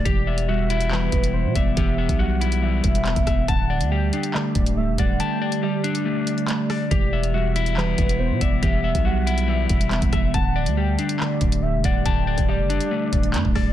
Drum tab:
HH |x--x--xx--xx--x-|x--x--xx--xxxxx-|x--x--xx--xx--x-|x--x--xx--xxx-o-|
CP |--------x-------|------------x---|--------x-------|------------x---|
SD |----------------|--------------r-|----------------|--------------r-|
BD |o---------o---o-|o--o------o--oo-|o---------o---o-|----------------|

HH |x--x--xx--xx--x-|x--x--xx--xxxxx-|x--x--xx--xx--x-|x--x--xx--xxx-o-|
CP |--------x-------|------------x---|--------x-------|------------x---|
SD |----------------|--------------r-|----------------|--------------r-|
BD |o---------o---o-|o--o------o--oo-|o---------o---o-|o--o------o--oo-|